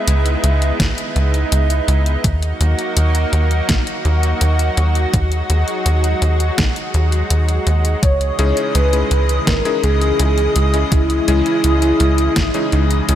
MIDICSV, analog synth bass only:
0, 0, Header, 1, 2, 480
1, 0, Start_track
1, 0, Tempo, 722892
1, 1491, Time_signature, 4, 2, 24, 8
1, 8732, End_track
2, 0, Start_track
2, 0, Title_t, "Analog synth bass"
2, 0, Program_c, 0, 38
2, 49, Note_on_c, 0, 37, 83
2, 241, Note_off_c, 0, 37, 0
2, 290, Note_on_c, 0, 37, 96
2, 481, Note_off_c, 0, 37, 0
2, 530, Note_on_c, 0, 32, 78
2, 626, Note_off_c, 0, 32, 0
2, 769, Note_on_c, 0, 37, 106
2, 961, Note_off_c, 0, 37, 0
2, 1009, Note_on_c, 0, 37, 84
2, 1201, Note_off_c, 0, 37, 0
2, 1248, Note_on_c, 0, 37, 99
2, 1440, Note_off_c, 0, 37, 0
2, 1490, Note_on_c, 0, 39, 93
2, 1681, Note_off_c, 0, 39, 0
2, 1729, Note_on_c, 0, 39, 94
2, 1825, Note_off_c, 0, 39, 0
2, 1969, Note_on_c, 0, 39, 81
2, 2161, Note_off_c, 0, 39, 0
2, 2209, Note_on_c, 0, 39, 99
2, 2401, Note_off_c, 0, 39, 0
2, 2449, Note_on_c, 0, 34, 81
2, 2545, Note_off_c, 0, 34, 0
2, 2689, Note_on_c, 0, 39, 108
2, 2881, Note_off_c, 0, 39, 0
2, 2929, Note_on_c, 0, 39, 79
2, 3121, Note_off_c, 0, 39, 0
2, 3169, Note_on_c, 0, 39, 100
2, 3361, Note_off_c, 0, 39, 0
2, 3410, Note_on_c, 0, 39, 95
2, 3601, Note_off_c, 0, 39, 0
2, 3650, Note_on_c, 0, 39, 94
2, 3745, Note_off_c, 0, 39, 0
2, 3889, Note_on_c, 0, 39, 84
2, 4081, Note_off_c, 0, 39, 0
2, 4129, Note_on_c, 0, 39, 102
2, 4321, Note_off_c, 0, 39, 0
2, 4370, Note_on_c, 0, 34, 77
2, 4466, Note_off_c, 0, 34, 0
2, 4610, Note_on_c, 0, 39, 101
2, 4801, Note_off_c, 0, 39, 0
2, 4850, Note_on_c, 0, 39, 82
2, 5041, Note_off_c, 0, 39, 0
2, 5091, Note_on_c, 0, 39, 99
2, 5281, Note_off_c, 0, 39, 0
2, 5330, Note_on_c, 0, 37, 98
2, 5521, Note_off_c, 0, 37, 0
2, 5569, Note_on_c, 0, 37, 94
2, 5665, Note_off_c, 0, 37, 0
2, 5809, Note_on_c, 0, 37, 81
2, 6001, Note_off_c, 0, 37, 0
2, 6049, Note_on_c, 0, 37, 96
2, 6241, Note_off_c, 0, 37, 0
2, 6290, Note_on_c, 0, 32, 84
2, 6386, Note_off_c, 0, 32, 0
2, 6531, Note_on_c, 0, 37, 104
2, 6721, Note_off_c, 0, 37, 0
2, 6769, Note_on_c, 0, 37, 82
2, 6961, Note_off_c, 0, 37, 0
2, 7011, Note_on_c, 0, 37, 100
2, 7201, Note_off_c, 0, 37, 0
2, 7249, Note_on_c, 0, 37, 98
2, 7441, Note_off_c, 0, 37, 0
2, 7490, Note_on_c, 0, 37, 94
2, 7585, Note_off_c, 0, 37, 0
2, 7730, Note_on_c, 0, 37, 83
2, 7921, Note_off_c, 0, 37, 0
2, 7970, Note_on_c, 0, 37, 103
2, 8161, Note_off_c, 0, 37, 0
2, 8209, Note_on_c, 0, 32, 80
2, 8305, Note_off_c, 0, 32, 0
2, 8450, Note_on_c, 0, 37, 108
2, 8641, Note_off_c, 0, 37, 0
2, 8690, Note_on_c, 0, 37, 86
2, 8732, Note_off_c, 0, 37, 0
2, 8732, End_track
0, 0, End_of_file